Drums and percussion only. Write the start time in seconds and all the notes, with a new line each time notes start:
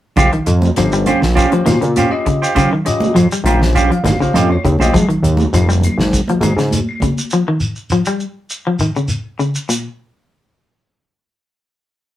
0.16 kick, closed hi-hat, low conga, claves, shekere
0.33 closed hi-hat
0.46 closed hi-hat, shekere
0.62 high conga, shekere
0.76 snare, closed hi-hat, claves, shekere
0.92 shekere
1.06 closed hi-hat, high conga, low conga, claves, shekere
1.22 snare
1.37 kick, closed hi-hat, shekere
1.52 closed hi-hat, high conga
1.66 snare, closed hi-hat, high conga, claves, shekere
1.82 closed hi-hat, shekere
1.96 closed hi-hat, high conga, shekere
2.12 claves
2.26 kick, closed hi-hat, shekere
2.43 shekere
2.56 kick, closed hi-hat, low conga, claves, shekere
2.86 closed hi-hat, shekere
3.00 high conga, shekere
3.16 closed hi-hat, claves, shekere
3.31 closed hi-hat, shekere
3.46 closed hi-hat, high conga, low conga, claves, shekere
3.60 snare, low conga
3.75 kick, closed hi-hat, shekere
3.92 closed hi-hat
4.04 snare, closed hi-hat, high conga, claves, shekere
4.22 shekere
4.33 closed hi-hat, high conga, shekere
4.50 claves
4.65 kick, closed hi-hat, shekere
4.79 high conga, shekere
4.92 kick, closed hi-hat, low conga, claves, shekere
5.10 closed hi-hat
5.24 closed hi-hat, shekere
5.37 high conga, shekere
5.54 closed hi-hat, claves, shekere
5.67 high conga, shekere
5.81 closed hi-hat, high conga, low conga, claves, shekere
5.99 snare, low conga
6.13 kick, closed hi-hat, shekere
6.28 closed hi-hat, high conga
6.41 closed hi-hat, high conga, claves, shekere
6.58 snare, closed hi-hat, shekere
6.71 closed hi-hat, high conga, shekere
6.89 claves
7.00 kick, closed hi-hat, high conga, shekere
7.18 shekere
7.31 shekere
7.60 shekere
7.76 shekere
7.90 shekere
8.05 shekere
8.20 shekere
8.50 shekere
8.79 shekere
8.96 shekere
9.08 shekere
9.40 shekere
9.55 shekere
9.70 shekere